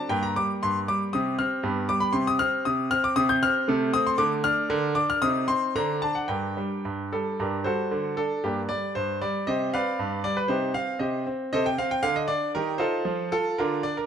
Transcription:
grand piano
0.09 G2 A#3 G4 G5
0.23 A#5
0.36 G3 D6
0.63 G2 C6
0.88 G3 D6
1.13 C3 C4 G4 D#6
1.39 C4 F6
1.63 G2 B3 G4
1.89 G3 D6
2.00 B5
2.13 C3 C4 G4 C6
2.27 D#6
2.39 C4 F6
2.65 C3 D#6
2.91 C4 F6
3.04 D6
3.16 C3 C4 G4 D#6
3.29 G6
3.43 C4 F6
3.68 C3 A3 A4
3.94 C4 D#6
4.07 C6
4.18 D3 A3 A4 D6
4.44 D4 F6
4.69 D3 D4 A#4
4.95 D4 D6
5.10 F6
5.22 C3 D#4 C5 D#6
5.48 C4 C6
5.76 D3 D4 C5 A#5
6.02 D4 A5
6.15 F#5
6.28 G2 D4 A#4 G5
6.57 G3
6.85 G2
7.12 G3 A4
7.40 G2 D4 G4 A#4
7.64 G3 F#4 A4 C5
7.91 D3
8.17 D4 A4
8.44 G2 A#3 D4 G4
8.69 G3 D5
8.95 G2 C5
9.22 G3 D5
9.47 C3 G4 C5 D#5
9.74 C4 B4 D5 F5
9.99 G2
10.24 G3 D5
10.37 B4
10.48 C3 D#4 G4 C5
10.74 C4 F5
10.99 C3 G4 C5 D#5
11.27 C4
11.53 C3 A4 C5 D#5
11.66 G5
11.78 C4 F5
11.91 G5
12.03 D3 F5
12.16 D#5
12.28 D4 D5
12.55 D#3 D#4 G4 A#4
12.78 D#4 F4 A4 C5
13.05 F3
13.32 F4 A4
13.58 D3 D4 F4 A#4
13.83 D4 D5
13.97 A#4

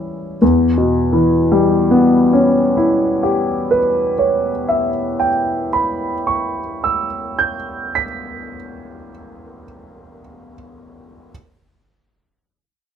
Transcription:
grand piano
Already playing: E3 G3 C#4 E4 E5 G5 C#6 E6
0.42 E2
0.78 B2
1.13 E3
1.52 G3
1.91 B3
2.33 C#4
2.77 E4
3.23 G4
3.71 B4
4.19 C#5
4.69 E5
5.20 G5
5.73 B5
6.27 C#6
6.84 E6
7.39 G6
7.95 B6

